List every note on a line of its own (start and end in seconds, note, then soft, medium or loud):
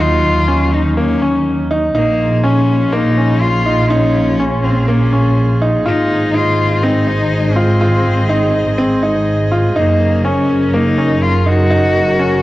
0.00 1.93 D#2 loud
0.00 1.95 D#3 medium
0.00 1.96 F#3 medium
0.00 0.43 D#4 medium
0.00 3.28 D#4 medium
0.00 0.75 F4 loud
0.48 0.92 C#4 medium
0.73 0.97 D#4 loud
0.97 1.19 A#3 medium
0.97 1.43 C#4 medium
1.22 1.65 C#4 medium
1.71 1.93 D#4 medium
1.95 5.83 A#1 loud
1.95 2.45 A#3 loud
1.95 7.07 A#3 medium
1.95 2.38 D#4 medium
2.21 6.81 F4 medium
2.21 12.42 G#4 medium
2.44 2.87 C#4 medium
2.44 2.94 C#4 medium
2.92 3.14 A#3 loud
2.92 3.43 D#4 loud
3.17 3.60 C#4 medium
3.41 3.92 F4 loud
3.66 3.88 D#4 medium
3.90 4.65 C#4 loud
3.90 4.34 D#4 loud
4.40 4.83 C#4 medium
4.64 4.90 C4 medium
4.88 5.10 A#3 medium
4.88 5.37 C#4 medium
5.13 5.56 C#4 medium
5.62 5.83 D#4 medium
5.86 9.74 G#1 loud
5.86 9.76 G#3 medium
5.86 6.36 D#4 loud
5.86 6.29 F4 medium
6.01 10.79 C5 medium
6.09 11.26 D#5 medium
6.34 6.77 D#4 medium
6.34 6.84 F4 loud
6.82 7.05 C4 medium
6.82 7.57 D#4 loud
7.07 7.50 D#4 medium
7.55 9.02 C4 medium
7.55 7.78 F4 medium
7.81 8.24 F4 loud
8.29 8.73 D#4 medium
8.78 9.00 C4 loud
9.03 9.46 D#4 medium
9.52 9.73 F4 medium
9.76 12.42 F#1 loud
9.76 12.42 F#3 medium
9.76 10.26 A#3 medium
9.76 10.19 D#4 medium
9.96 12.42 C#4 medium
9.96 12.42 A#4 medium
10.24 10.75 C#4 medium
10.24 10.68 C#4 medium
10.74 10.95 A#3 medium
10.74 11.24 D#4 loud
10.98 11.41 C#4 medium
11.23 11.49 F4 loud
11.46 11.68 D#4 medium
11.46 12.42 F#4 loud
11.70 12.14 D#4 loud
12.19 12.42 C#4 medium